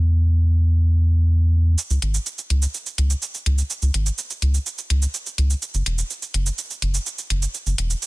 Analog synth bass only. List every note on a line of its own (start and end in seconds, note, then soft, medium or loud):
0.00 1.76 E2 medium
1.90 1.98 C#2 loud
2.02 2.18 G#1 loud
2.50 2.66 C#2 medium
2.98 3.14 C#2 medium
3.46 3.62 C#2 medium
3.82 3.90 C#2 medium
3.94 4.10 G#1 loud
4.42 4.58 C#2 medium
4.90 5.06 C#2 medium
5.38 5.54 C#2 medium
5.74 5.82 F#1 medium
5.86 6.02 E1 loud
6.34 6.50 F#1 medium
6.82 6.98 F#1 medium
7.30 7.46 F#1 medium
7.66 7.74 F#1 loud
7.78 7.94 E1 loud